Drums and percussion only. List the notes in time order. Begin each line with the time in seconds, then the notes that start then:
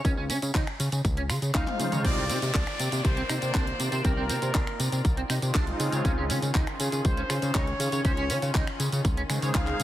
0.05 kick, closed hi-hat, tambourine
0.30 open hi-hat, tambourine
0.42 closed hi-hat, tambourine
0.55 kick, clap, closed hi-hat, tambourine
0.67 finger snap, closed hi-hat
0.80 open hi-hat, tambourine
0.92 closed hi-hat, tambourine
1.05 kick, closed hi-hat, tambourine
1.17 closed hi-hat
1.30 finger snap, open hi-hat, tambourine
1.42 closed hi-hat, tambourine
1.54 kick, clap, closed hi-hat, high tom, tambourine
1.67 clap, closed hi-hat, high tom
1.80 open hi-hat, mid tom, tambourine
1.92 closed hi-hat, mid tom, tambourine
2.05 kick, closed hi-hat, tambourine
2.30 open hi-hat, tambourine
2.42 closed hi-hat, tambourine
2.54 kick, clap, closed hi-hat, tambourine
2.67 finger snap, closed hi-hat
2.80 open hi-hat, tambourine
2.92 closed hi-hat, tambourine
3.05 kick, closed hi-hat, tambourine
3.17 closed hi-hat
3.29 finger snap, open hi-hat, tambourine
3.42 closed hi-hat, tambourine
3.54 kick, clap, closed hi-hat, tambourine
3.67 closed hi-hat
3.80 open hi-hat, tambourine
3.92 closed hi-hat, tambourine
4.05 kick, closed hi-hat, tambourine
4.30 open hi-hat, tambourine
4.42 closed hi-hat, tambourine
4.55 kick, clap, closed hi-hat, tambourine
4.67 finger snap, closed hi-hat
4.80 open hi-hat, tambourine
4.92 closed hi-hat, tambourine
5.05 kick, closed hi-hat, tambourine
5.17 closed hi-hat
5.30 finger snap, open hi-hat, tambourine
5.42 closed hi-hat, tambourine
5.55 kick, clap, closed hi-hat, tambourine
5.67 closed hi-hat
5.80 open hi-hat, tambourine
5.92 closed hi-hat, tambourine
6.05 kick, closed hi-hat, tambourine
6.30 open hi-hat, tambourine
6.42 closed hi-hat, tambourine
6.55 kick, clap, closed hi-hat, tambourine
6.67 finger snap, closed hi-hat
6.80 open hi-hat, tambourine
6.92 closed hi-hat, tambourine
7.05 kick, closed hi-hat, tambourine
7.17 closed hi-hat
7.30 finger snap, open hi-hat, tambourine
7.42 closed hi-hat, tambourine
7.55 kick, clap, closed hi-hat, tambourine
7.67 closed hi-hat
7.80 open hi-hat, tambourine
7.92 closed hi-hat, tambourine
8.05 kick, closed hi-hat, tambourine
8.17 closed hi-hat
8.30 open hi-hat, tambourine
8.42 closed hi-hat, tambourine
8.55 kick, clap, closed hi-hat, tambourine
8.67 finger snap, closed hi-hat
8.80 open hi-hat, tambourine
8.92 closed hi-hat, tambourine
9.05 kick, closed hi-hat, tambourine
9.17 closed hi-hat
9.30 finger snap, open hi-hat, tambourine
9.42 closed hi-hat, tambourine
9.55 kick, clap, closed hi-hat, tambourine
9.67 clap, closed hi-hat
9.80 open hi-hat